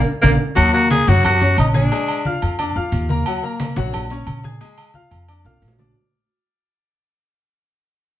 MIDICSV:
0, 0, Header, 1, 5, 480
1, 0, Start_track
1, 0, Tempo, 336889
1, 804, Time_signature, 4, 2, 24, 8
1, 11669, End_track
2, 0, Start_track
2, 0, Title_t, "Grand piano"
2, 0, Program_c, 0, 0
2, 317, Note_on_c, 0, 77, 98
2, 322, Note_on_c, 0, 74, 95
2, 323, Note_on_c, 0, 70, 93
2, 473, Note_off_c, 0, 77, 0
2, 476, Note_off_c, 0, 74, 0
2, 477, Note_off_c, 0, 70, 0
2, 787, Note_on_c, 0, 54, 88
2, 796, Note_on_c, 0, 66, 84
2, 798, Note_on_c, 0, 78, 82
2, 991, Note_off_c, 0, 54, 0
2, 996, Note_off_c, 0, 66, 0
2, 998, Note_off_c, 0, 78, 0
2, 1040, Note_on_c, 0, 58, 77
2, 1047, Note_on_c, 0, 70, 76
2, 1053, Note_on_c, 0, 82, 80
2, 1435, Note_off_c, 0, 58, 0
2, 1439, Note_off_c, 0, 70, 0
2, 1443, Note_off_c, 0, 82, 0
2, 1527, Note_on_c, 0, 66, 91
2, 1534, Note_on_c, 0, 54, 96
2, 1543, Note_on_c, 0, 78, 92
2, 1920, Note_off_c, 0, 66, 0
2, 1924, Note_off_c, 0, 54, 0
2, 1929, Note_off_c, 0, 78, 0
2, 2011, Note_on_c, 0, 61, 78
2, 2014, Note_on_c, 0, 73, 80
2, 2018, Note_on_c, 0, 85, 82
2, 2402, Note_off_c, 0, 61, 0
2, 2404, Note_off_c, 0, 73, 0
2, 2406, Note_off_c, 0, 85, 0
2, 2481, Note_on_c, 0, 68, 86
2, 2487, Note_on_c, 0, 80, 84
2, 2490, Note_on_c, 0, 92, 81
2, 2679, Note_off_c, 0, 68, 0
2, 2683, Note_off_c, 0, 80, 0
2, 2685, Note_off_c, 0, 92, 0
2, 2730, Note_on_c, 0, 56, 88
2, 2734, Note_on_c, 0, 80, 85
2, 2740, Note_on_c, 0, 68, 84
2, 3122, Note_off_c, 0, 56, 0
2, 3124, Note_off_c, 0, 80, 0
2, 3128, Note_off_c, 0, 68, 0
2, 3217, Note_on_c, 0, 65, 78
2, 3225, Note_on_c, 0, 89, 78
2, 3227, Note_on_c, 0, 77, 75
2, 3606, Note_off_c, 0, 65, 0
2, 3611, Note_off_c, 0, 89, 0
2, 3612, Note_off_c, 0, 77, 0
2, 3693, Note_on_c, 0, 62, 79
2, 3697, Note_on_c, 0, 74, 78
2, 3703, Note_on_c, 0, 86, 77
2, 3887, Note_off_c, 0, 62, 0
2, 3889, Note_off_c, 0, 74, 0
2, 3893, Note_off_c, 0, 86, 0
2, 3929, Note_on_c, 0, 65, 83
2, 3936, Note_on_c, 0, 77, 82
2, 3937, Note_on_c, 0, 89, 83
2, 4321, Note_off_c, 0, 65, 0
2, 4325, Note_off_c, 0, 77, 0
2, 4326, Note_off_c, 0, 89, 0
2, 4409, Note_on_c, 0, 58, 86
2, 4416, Note_on_c, 0, 70, 87
2, 4421, Note_on_c, 0, 82, 87
2, 4604, Note_off_c, 0, 58, 0
2, 4609, Note_off_c, 0, 70, 0
2, 4611, Note_off_c, 0, 82, 0
2, 4654, Note_on_c, 0, 54, 87
2, 4658, Note_on_c, 0, 66, 87
2, 4661, Note_on_c, 0, 78, 87
2, 4847, Note_off_c, 0, 54, 0
2, 4850, Note_off_c, 0, 66, 0
2, 4852, Note_off_c, 0, 78, 0
2, 4882, Note_on_c, 0, 58, 81
2, 4890, Note_on_c, 0, 70, 79
2, 4896, Note_on_c, 0, 82, 85
2, 5277, Note_off_c, 0, 58, 0
2, 5282, Note_off_c, 0, 70, 0
2, 5285, Note_off_c, 0, 82, 0
2, 5369, Note_on_c, 0, 78, 93
2, 5370, Note_on_c, 0, 66, 96
2, 5371, Note_on_c, 0, 54, 92
2, 5761, Note_off_c, 0, 78, 0
2, 5762, Note_off_c, 0, 54, 0
2, 5762, Note_off_c, 0, 66, 0
2, 5859, Note_on_c, 0, 61, 81
2, 5859, Note_on_c, 0, 73, 85
2, 5865, Note_on_c, 0, 85, 79
2, 6247, Note_off_c, 0, 61, 0
2, 6247, Note_off_c, 0, 73, 0
2, 6251, Note_off_c, 0, 85, 0
2, 6329, Note_on_c, 0, 68, 81
2, 6330, Note_on_c, 0, 80, 82
2, 6341, Note_on_c, 0, 92, 83
2, 6524, Note_off_c, 0, 68, 0
2, 6525, Note_off_c, 0, 80, 0
2, 6531, Note_off_c, 0, 92, 0
2, 6564, Note_on_c, 0, 56, 87
2, 6566, Note_on_c, 0, 68, 81
2, 6568, Note_on_c, 0, 80, 88
2, 6958, Note_off_c, 0, 56, 0
2, 6960, Note_off_c, 0, 68, 0
2, 6960, Note_off_c, 0, 80, 0
2, 7041, Note_on_c, 0, 65, 72
2, 7052, Note_on_c, 0, 77, 74
2, 7052, Note_on_c, 0, 89, 72
2, 7436, Note_off_c, 0, 65, 0
2, 7443, Note_off_c, 0, 77, 0
2, 7443, Note_off_c, 0, 89, 0
2, 7530, Note_on_c, 0, 74, 75
2, 7535, Note_on_c, 0, 62, 71
2, 7538, Note_on_c, 0, 86, 73
2, 7725, Note_off_c, 0, 74, 0
2, 7728, Note_off_c, 0, 62, 0
2, 7730, Note_off_c, 0, 86, 0
2, 7767, Note_on_c, 0, 65, 78
2, 7772, Note_on_c, 0, 77, 79
2, 7779, Note_on_c, 0, 89, 84
2, 8160, Note_off_c, 0, 65, 0
2, 8163, Note_off_c, 0, 77, 0
2, 8167, Note_off_c, 0, 89, 0
2, 8248, Note_on_c, 0, 62, 77
2, 8256, Note_on_c, 0, 74, 77
2, 8263, Note_on_c, 0, 86, 76
2, 8443, Note_off_c, 0, 62, 0
2, 8448, Note_off_c, 0, 74, 0
2, 8452, Note_off_c, 0, 86, 0
2, 11669, End_track
3, 0, Start_track
3, 0, Title_t, "Tenor saxophone"
3, 0, Program_c, 1, 66
3, 309, Note_on_c, 1, 58, 106
3, 429, Note_off_c, 1, 58, 0
3, 792, Note_on_c, 1, 66, 107
3, 1021, Note_off_c, 1, 66, 0
3, 1048, Note_on_c, 1, 66, 101
3, 1269, Note_off_c, 1, 66, 0
3, 1292, Note_on_c, 1, 68, 102
3, 1541, Note_on_c, 1, 66, 104
3, 1563, Note_off_c, 1, 68, 0
3, 1773, Note_off_c, 1, 66, 0
3, 1784, Note_on_c, 1, 66, 105
3, 2221, Note_off_c, 1, 66, 0
3, 2267, Note_on_c, 1, 63, 92
3, 2370, Note_off_c, 1, 63, 0
3, 2502, Note_on_c, 1, 62, 92
3, 3397, Note_off_c, 1, 62, 0
3, 11669, End_track
4, 0, Start_track
4, 0, Title_t, "Upright bass"
4, 0, Program_c, 2, 32
4, 322, Note_on_c, 2, 34, 99
4, 501, Note_off_c, 2, 34, 0
4, 804, Note_on_c, 2, 39, 98
4, 1474, Note_off_c, 2, 39, 0
4, 1526, Note_on_c, 2, 42, 89
4, 2195, Note_off_c, 2, 42, 0
4, 2242, Note_on_c, 2, 34, 92
4, 2668, Note_off_c, 2, 34, 0
4, 3450, Note_on_c, 2, 41, 92
4, 3894, Note_off_c, 2, 41, 0
4, 3926, Note_on_c, 2, 41, 77
4, 4149, Note_off_c, 2, 41, 0
4, 4158, Note_on_c, 2, 39, 99
4, 4586, Note_off_c, 2, 39, 0
4, 5363, Note_on_c, 2, 34, 96
4, 6033, Note_off_c, 2, 34, 0
4, 6073, Note_on_c, 2, 34, 95
4, 6503, Note_off_c, 2, 34, 0
4, 7280, Note_on_c, 2, 41, 92
4, 7729, Note_off_c, 2, 41, 0
4, 7756, Note_on_c, 2, 35, 79
4, 7984, Note_off_c, 2, 35, 0
4, 8006, Note_on_c, 2, 34, 95
4, 8429, Note_off_c, 2, 34, 0
4, 11669, End_track
5, 0, Start_track
5, 0, Title_t, "Drums"
5, 332, Note_on_c, 9, 65, 100
5, 334, Note_on_c, 9, 63, 108
5, 474, Note_off_c, 9, 65, 0
5, 477, Note_off_c, 9, 63, 0
5, 808, Note_on_c, 9, 68, 102
5, 814, Note_on_c, 9, 63, 35
5, 951, Note_off_c, 9, 68, 0
5, 956, Note_off_c, 9, 63, 0
5, 1053, Note_on_c, 9, 63, 37
5, 1196, Note_off_c, 9, 63, 0
5, 1289, Note_on_c, 9, 63, 102
5, 1293, Note_on_c, 9, 68, 80
5, 1431, Note_off_c, 9, 63, 0
5, 1435, Note_off_c, 9, 68, 0
5, 1534, Note_on_c, 9, 63, 97
5, 1677, Note_off_c, 9, 63, 0
5, 1767, Note_on_c, 9, 63, 35
5, 1767, Note_on_c, 9, 64, 89
5, 1776, Note_on_c, 9, 68, 112
5, 1910, Note_off_c, 9, 63, 0
5, 1910, Note_off_c, 9, 64, 0
5, 1918, Note_off_c, 9, 68, 0
5, 2007, Note_on_c, 9, 63, 36
5, 2007, Note_on_c, 9, 64, 71
5, 2010, Note_on_c, 9, 68, 74
5, 2150, Note_off_c, 9, 63, 0
5, 2150, Note_off_c, 9, 64, 0
5, 2152, Note_off_c, 9, 68, 0
5, 2248, Note_on_c, 9, 63, 90
5, 2252, Note_on_c, 9, 68, 104
5, 2391, Note_off_c, 9, 63, 0
5, 2395, Note_off_c, 9, 68, 0
5, 2482, Note_on_c, 9, 63, 90
5, 2625, Note_off_c, 9, 63, 0
5, 2727, Note_on_c, 9, 63, 35
5, 2733, Note_on_c, 9, 68, 82
5, 2869, Note_off_c, 9, 63, 0
5, 2876, Note_off_c, 9, 68, 0
5, 2966, Note_on_c, 9, 63, 38
5, 2969, Note_on_c, 9, 68, 98
5, 3108, Note_off_c, 9, 63, 0
5, 3111, Note_off_c, 9, 68, 0
5, 3204, Note_on_c, 9, 63, 65
5, 3347, Note_off_c, 9, 63, 0
5, 3448, Note_on_c, 9, 63, 37
5, 3450, Note_on_c, 9, 68, 86
5, 3590, Note_off_c, 9, 63, 0
5, 3592, Note_off_c, 9, 68, 0
5, 3686, Note_on_c, 9, 63, 39
5, 3688, Note_on_c, 9, 68, 112
5, 3829, Note_off_c, 9, 63, 0
5, 3830, Note_off_c, 9, 68, 0
5, 3924, Note_on_c, 9, 63, 38
5, 4067, Note_off_c, 9, 63, 0
5, 4164, Note_on_c, 9, 63, 37
5, 4164, Note_on_c, 9, 68, 72
5, 4306, Note_off_c, 9, 63, 0
5, 4307, Note_off_c, 9, 68, 0
5, 4402, Note_on_c, 9, 63, 90
5, 4544, Note_off_c, 9, 63, 0
5, 4644, Note_on_c, 9, 68, 113
5, 4786, Note_off_c, 9, 68, 0
5, 4886, Note_on_c, 9, 63, 37
5, 5028, Note_off_c, 9, 63, 0
5, 5126, Note_on_c, 9, 63, 96
5, 5127, Note_on_c, 9, 68, 76
5, 5268, Note_off_c, 9, 63, 0
5, 5270, Note_off_c, 9, 68, 0
5, 5363, Note_on_c, 9, 63, 94
5, 5505, Note_off_c, 9, 63, 0
5, 5604, Note_on_c, 9, 63, 37
5, 5604, Note_on_c, 9, 64, 87
5, 5612, Note_on_c, 9, 68, 110
5, 5746, Note_off_c, 9, 63, 0
5, 5746, Note_off_c, 9, 64, 0
5, 5754, Note_off_c, 9, 68, 0
5, 5843, Note_on_c, 9, 68, 76
5, 5847, Note_on_c, 9, 63, 37
5, 5986, Note_off_c, 9, 68, 0
5, 5989, Note_off_c, 9, 63, 0
5, 6080, Note_on_c, 9, 68, 106
5, 6086, Note_on_c, 9, 63, 88
5, 6222, Note_off_c, 9, 68, 0
5, 6229, Note_off_c, 9, 63, 0
5, 6319, Note_on_c, 9, 63, 86
5, 6462, Note_off_c, 9, 63, 0
5, 6562, Note_on_c, 9, 63, 35
5, 6566, Note_on_c, 9, 68, 83
5, 6705, Note_off_c, 9, 63, 0
5, 6709, Note_off_c, 9, 68, 0
5, 6805, Note_on_c, 9, 63, 37
5, 6806, Note_on_c, 9, 68, 103
5, 6947, Note_off_c, 9, 63, 0
5, 6949, Note_off_c, 9, 68, 0
5, 7035, Note_on_c, 9, 63, 64
5, 7177, Note_off_c, 9, 63, 0
5, 7284, Note_on_c, 9, 63, 36
5, 7287, Note_on_c, 9, 68, 91
5, 7427, Note_off_c, 9, 63, 0
5, 7429, Note_off_c, 9, 68, 0
5, 7528, Note_on_c, 9, 63, 38
5, 7530, Note_on_c, 9, 68, 110
5, 7671, Note_off_c, 9, 63, 0
5, 7672, Note_off_c, 9, 68, 0
5, 7766, Note_on_c, 9, 63, 37
5, 7774, Note_on_c, 9, 65, 80
5, 7909, Note_off_c, 9, 63, 0
5, 7917, Note_off_c, 9, 65, 0
5, 8001, Note_on_c, 9, 63, 39
5, 8013, Note_on_c, 9, 68, 72
5, 8091, Note_on_c, 9, 66, 83
5, 8144, Note_off_c, 9, 63, 0
5, 8156, Note_off_c, 9, 68, 0
5, 8234, Note_off_c, 9, 66, 0
5, 8242, Note_on_c, 9, 63, 90
5, 8253, Note_on_c, 9, 66, 75
5, 8385, Note_off_c, 9, 63, 0
5, 8396, Note_off_c, 9, 66, 0
5, 11669, End_track
0, 0, End_of_file